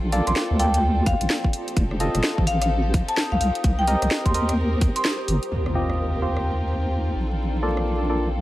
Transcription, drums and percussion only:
0.12 open hi-hat loud
0.27 cross-stick soft
0.27 closed hi-hat medium
0.36 snare loud
0.59 open hi-hat loud
0.74 closed hi-hat medium
1.06 kick loud
1.06 open hi-hat loud
1.21 closed hi-hat medium
1.30 snare loud
1.44 kick medium
1.53 open hi-hat loud
1.68 closed hi-hat soft
1.77 kick loud
1.77 closed hi-hat medium
1.91 cross-stick soft
2.00 open hi-hat loud
2.15 cross-stick soft
2.15 closed hi-hat medium
2.24 snare loud
2.38 kick medium
2.47 open hi-hat loud
2.62 cross-stick medium
2.62 closed hi-hat medium
2.94 kick loud
2.94 open hi-hat loud
3.08 closed hi-hat medium
3.17 snare loud
3.41 open hi-hat loud
3.55 closed hi-hat soft
3.64 kick loud
3.64 closed hi-hat medium
3.88 open hi-hat loud
4.02 cross-stick soft
4.02 closed hi-hat medium
4.11 snare loud
4.26 kick medium
4.26 closed hi-hat soft
4.34 open hi-hat loud
4.49 cross-stick medium
4.49 closed hi-hat medium
4.81 kick loud
4.81 open hi-hat loud
4.96 closed hi-hat medium
5.05 snare loud
5.28 open hi-hat loud
5.43 open hi-hat medium
5.66 cross-stick soft
5.90 cross-stick soft
6.37 cross-stick soft
7.77 cross-stick soft

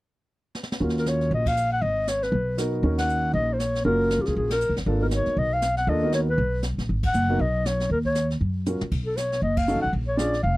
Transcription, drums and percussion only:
0.55 snare medium
0.63 snare medium
0.72 snare medium
0.80 brush sweep soft
0.89 snare soft
0.97 snare soft
1.06 snare soft
1.06 hi-hat pedal soft
1.21 snare soft
1.31 brush sweep soft
1.46 kick medium
1.46 ride medium
1.57 hi-hat pedal medium
1.82 brush sweep soft
2.07 snare soft
2.07 hi-hat pedal medium
2.23 snare soft
2.33 brush sweep soft
2.58 snare soft
2.58 hi-hat pedal soft
2.83 brush sweep soft
2.98 snare medium
2.98 ride medium
3.09 hi-hat pedal soft
3.35 brush sweep soft
3.59 snare soft
3.59 hi-hat pedal soft
3.75 snare soft
3.85 brush sweep soft
4.10 snare soft
4.10 hi-hat pedal soft
4.25 snare soft
4.36 brush sweep soft
4.50 snare medium
4.50 ride medium
4.61 hi-hat pedal soft
4.76 snare soft
4.87 brush sweep soft
5.11 snare soft
5.11 hi-hat pedal medium
5.26 snare soft
5.36 brush sweep soft
5.62 snare soft
5.62 hi-hat pedal soft
5.77 snare soft
5.87 brush sweep soft
6.12 snare soft
6.12 hi-hat pedal soft
6.38 brush sweep soft
6.62 snare soft
6.62 hi-hat pedal soft
6.78 snare soft
6.88 brush sweep soft
7.03 kick medium
7.03 ride medium
7.13 hi-hat pedal soft
7.39 brush sweep soft
7.65 snare medium
7.65 hi-hat pedal soft
7.80 snare soft
7.90 brush sweep soft
8.05 kick soft
8.15 snare soft
8.15 hi-hat pedal medium
8.30 snare soft
8.41 brush sweep soft
8.66 hi-hat pedal soft
8.66 mid tom soft
8.81 mid tom medium
8.91 brush sweep soft
8.91 kick medium
8.91 ride medium
9.17 snare medium
9.17 hi-hat pedal soft
9.32 snare soft
9.42 brush sweep soft
9.57 kick medium
9.57 ride medium
9.67 hi-hat pedal soft
9.92 brush sweep soft
10.18 snare medium
10.18 hi-hat pedal soft
10.33 snare soft
10.44 brush sweep soft

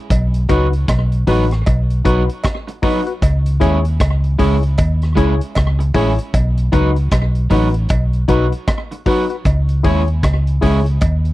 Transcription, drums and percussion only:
0.10 kick loud
0.10 closed hi-hat medium
0.10 cowbell medium
0.34 closed hi-hat medium
0.49 kick medium
0.49 closed hi-hat medium
0.73 closed hi-hat soft
0.88 kick medium
0.88 cross-stick medium
0.88 closed hi-hat medium
0.88 cowbell medium
1.12 closed hi-hat soft
1.27 kick medium
1.27 open hi-hat medium
1.51 cross-stick medium
1.51 closed hi-hat medium
1.66 kick loud
1.66 closed hi-hat medium
1.66 cowbell medium
1.90 closed hi-hat soft
2.05 kick medium
2.05 closed hi-hat medium
2.29 closed hi-hat soft
2.44 kick loud
2.44 cross-stick loud
2.44 closed hi-hat medium
2.44 cowbell medium
2.68 closed hi-hat medium
2.83 kick loud
2.83 open hi-hat medium
3.07 closed hi-hat soft
3.22 kick loud
3.22 closed hi-hat medium
3.22 cowbell medium
3.46 closed hi-hat medium
3.61 kick medium
3.61 closed hi-hat medium
3.85 closed hi-hat soft
4.00 kick medium
4.00 cross-stick loud
4.00 closed hi-hat medium
4.00 cowbell medium
4.24 closed hi-hat soft
4.39 kick medium
4.39 open hi-hat medium
4.63 closed hi-hat medium
4.77 kick loud
4.77 closed hi-hat medium
4.77 cowbell medium
5.02 cross-stick medium
5.02 closed hi-hat soft
5.17 kick medium
5.17 closed hi-hat medium
5.41 closed hi-hat medium
5.55 kick medium
5.55 cross-stick loud
5.55 closed hi-hat medium
5.55 cowbell medium
5.80 closed hi-hat medium
5.94 kick medium
5.94 open hi-hat medium
6.18 closed hi-hat soft
6.34 kick loud
6.34 closed hi-hat medium
6.34 cowbell medium
6.57 closed hi-hat medium
6.72 kick medium
6.72 closed hi-hat medium
6.96 closed hi-hat soft
7.11 kick medium
7.11 cross-stick loud
7.11 closed hi-hat loud
7.11 cowbell medium
7.35 closed hi-hat soft
7.50 kick medium
7.50 open hi-hat medium
7.74 closed hi-hat medium
7.89 kick loud
7.89 closed hi-hat medium
7.89 cowbell medium
8.13 closed hi-hat soft
8.28 kick medium
8.28 closed hi-hat medium
8.52 closed hi-hat medium
8.67 kick loud
8.67 cross-stick loud
8.67 closed hi-hat medium
8.67 cowbell medium
8.91 closed hi-hat medium
9.06 kick medium
9.06 open hi-hat medium
9.30 closed hi-hat soft
9.45 kick loud
9.45 closed hi-hat medium
9.45 cowbell medium
9.69 closed hi-hat soft
9.84 kick loud
9.84 open hi-hat soft
10.08 closed hi-hat soft
10.23 kick loud
10.23 cross-stick loud
10.23 closed hi-hat medium
10.23 cowbell medium
10.47 closed hi-hat soft
10.62 kick medium
10.62 open hi-hat medium
10.86 closed hi-hat medium
11.01 kick loud
11.01 closed hi-hat medium
11.01 cowbell medium
11.25 closed hi-hat soft

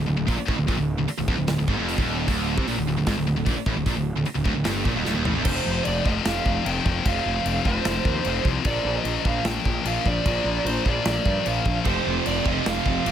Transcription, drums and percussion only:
0.28 kick loud
0.28 open hi-hat medium
0.48 kick loud
0.68 kick loud
0.68 open hi-hat medium
1.08 open hi-hat medium
1.28 kick loud
1.48 snare loud
1.48 open hi-hat medium
1.68 kick loud
1.89 open hi-hat medium
1.98 kick loud
2.28 kick loud
2.28 open hi-hat medium
2.58 kick loud
2.68 open hi-hat medium
3.07 kick loud
3.07 snare loud
3.07 open hi-hat medium
3.46 kick loud
3.46 open hi-hat medium
3.66 kick loud
3.86 kick loud
3.86 open hi-hat medium
4.25 open hi-hat medium
4.45 kick loud
4.65 snare loud
4.65 open hi-hat medium
4.85 kick loud
5.05 snare medium
5.25 floor tom medium
5.45 kick loud
5.45 crash loud
5.45 crash medium
5.85 crash medium
6.06 kick medium
6.25 snare loud
6.25 crash medium
6.46 kick medium
6.66 crash medium
6.86 kick medium
7.06 kick loud
7.06 crash medium
7.46 crash medium
7.65 kick medium
7.85 snare loud
7.85 crash medium
8.05 kick medium
8.25 crash medium
8.45 kick medium
8.65 kick loud
8.65 crash medium
9.05 crash medium
9.25 kick medium
9.45 snare loud
9.45 crash medium
9.65 kick medium
9.85 crash medium
10.06 kick medium
10.26 kick loud
10.26 crash medium
10.66 crash medium
10.86 kick medium
11.05 snare loud
11.05 crash medium
11.26 kick medium
11.46 crash medium
11.66 kick medium
11.85 kick loud
11.85 crash medium
12.26 crash medium
12.46 kick medium
12.66 snare loud
12.66 crash medium
12.86 kick medium
13.06 crash medium

